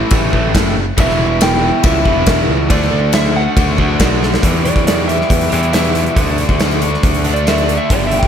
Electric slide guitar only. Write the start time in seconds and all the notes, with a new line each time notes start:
1.00 E5
1.42 G5
1.85 E5
2.71 D5
3.15 E5
3.36 F#5
4.65 D5
4.87 D5
5.08 E5
5.73 E5
7.34 D5
7.48 E5
7.64 D5
7.77 E5
7.92 D5
8.07 E5
8.19 G5